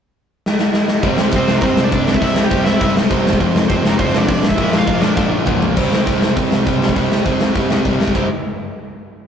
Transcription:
0.46 snare
0.59 snare
0.74 snare
0.88 snare
1.03 C2 C3 G3 C4, kick, crash
1.18 C2, snare
1.31 C2 C3 C4, kick, crash
1.35 G3 C4 C5
1.48 C2, snare
1.57 A#3 A#4
1.61 C2 C3 G3 C4 C5, kick, crash
1.77 C2, snare
1.84 D4 D5
1.92 C2 C3 G3 C4, kick, crash
2.07 snare
2.14 E4 E5, kick
2.21 C2 C3 G3 C4, kick, crash
2.36 snare
2.44 G4 G5
2.50 C2 C3 G3 C4, kick, crash
2.64 C2 E4 E5, snare
2.80 C2 C3 G3 C4, kick, crash
2.97 snare
3.10 C2 C3 G3 C4, kick, crash
3.26 E2, snare
3.33 kick
3.40 F1 F2 C3 F3, kick, crash
3.54 F1, snare
3.69 F1 F2 C3 F3 C4 C5, kick, crash
3.84 F1, snare
3.90 A#3 A#4
3.98 F1 F2 C3 F3 C4 C5, kick, crash
4.14 F1, snare
4.18 D4 D5
4.28 A1 F2 C3 F3, kick, crash
4.42 A#1, snare
4.49 E4 E5, kick
4.56 A#1 A#2 F3, kick, crash
4.60 A#2 F3 A#3
4.73 snare
4.78 F5
4.82 F4
4.87 A#1 A#2 F3 A#3, kick, crash
5.01 A#1 D4 D5, snare
5.17 A#1 A#2 F3 A#3, kick, snare
5.46 A#1 A#2 F3 A#3, kick, mid tom
5.62 B1, floor tom
5.76 C2 C3 G3 C4, kick, crash
5.93 C2, snare
6.05 C2 C3 G3 C4, kick, open hi-hat
6.22 snare
6.37 C2 C3 G3 C4, kick, open hi-hat
6.51 C2, snare
6.66 C2 C3 G3 C4, kick, open hi-hat
6.81 C2, snare
6.89 kick
6.95 C2 C3 G3 C4, kick, open hi-hat
7.11 C2, snare
7.25 C2 C3 G3 C4, kick, open hi-hat
7.41 snare
7.55 C2 C3 G3 C4, kick, open hi-hat
7.70 C2, snare
7.84 C2 C3 G3 C4, kick, open hi-hat
8.00 C2, snare
8.08 kick
8.14 C2 C3 G3 C4, kick, crash

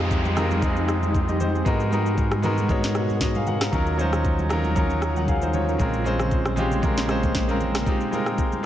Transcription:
Already playing: F2 F3 G#3 C4 D#4 F4 G4, downlifter
0.11 kick, shaker
0.25 high conga, shaker
0.35 G#3 C4 D#4 F4 A#4, cross-stick, low conga, shaker
0.51 high conga, shaker
0.61 G#3 C4 D#4 F4 G#4, kick, low conga, shaker
0.77 shaker
0.88 cross-stick, shaker
1.03 high conga, shaker
1.15 kick, shaker
1.28 G4 D#5, high conga, shaker
1.40 D#4 C5, high conga, low conga, shaker
1.55 C4 G#4, shaker
1.65 G#2 B2 G#3 B3 D#4 F#4 A#4, kick, shaker
1.80 shaker
1.91 G#3 B3 D#4 F#4 A#4, high conga, shaker
2.06 shaker
2.18 kick, shaker
2.32 cross-stick, high conga, shaker
2.42 G#3 B3 D#4 F#4 A#4, low conga, shaker
2.58 high conga, shaker
2.68 G#3 B3 D#4 F#4 C#5, kick, low conga, shaker
2.83 snare, shaker
2.95 cross-stick, shaker
3.09 high conga, shaker
3.21 F#4 D#5, kick, snare, shaker
3.35 G#4 F5, high conga, shaker
3.47 A#4 F#5, high conga, low conga, shaker
3.61 C#5 A#5, cross-stick, snare, shaker
3.72 D#2 C#3 D#3 F#3 C#4 D#4 F4 A#4, kick, shaker
3.87 shaker
3.98 F#3 C#4 D#4 F4 C5, high conga, shaker
4.13 cross-stick, shaker
4.25 kick, shaker
4.39 high conga, shaker
4.49 F#3 C#4 D#4 F4 A#4, cross-stick, low conga, shaker
4.64 high conga, shaker
4.75 F#3 C#4 D#4 F4 A#4, kick, low conga, shaker
4.90 shaker
5.02 cross-stick, shaker
5.16 A#4 F#5, high conga, shaker
5.28 G#4 F5, kick, shaker
5.42 D#4 C5, high conga, shaker
5.53 F4 C#5, high conga, low conga, shaker
5.69 C#4 A#4, shaker
5.78 A#1 A#2 G#3 A#3 C4 C#4 F4 A#4, kick, shaker
5.94 shaker
6.04 G#3 C4 C#4 F4 C5, high conga, shaker
6.19 cross-stick, shaker
6.31 kick, shaker
6.46 cross-stick, high conga, shaker
6.56 G#3 C4 C#4 F4 G4, low conga, shaker
6.71 high conga, shaker
6.82 G#3 C4 C#4 F4 A#4, kick, low conga, shaker
6.97 snare, shaker
7.08 G#3 C4 C#4 F4 C5, cross-stick, shaker
7.23 kick, high conga, shaker
7.35 kick, snare, shaker
7.48 G#3 C4 C#4 F4 A#4, high conga, shaker
7.61 high conga, low conga, shaker
7.75 cross-stick, snare, shaker
7.85 F3 G#3 C4 D#4 F4 G4 G5, kick, shaker
8.01 shaker
8.11 G#3 C4 D#4 F4 A#4, high conga, shaker
8.26 cross-stick, shaker
8.38 kick, shaker
8.52 high conga, shaker

